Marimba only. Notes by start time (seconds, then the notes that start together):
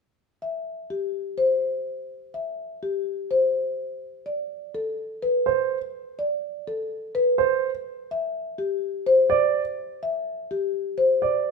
0.42 E5
0.90 G4
1.38 C5
2.34 E5
2.83 G4
3.31 C5
4.26 D5
4.75 A4
5.22 B4
6.19 D5
6.68 A4
7.15 B4
8.11 E5
8.58 G4
9.06 C5
10.03 E5
10.51 G4
10.98 C5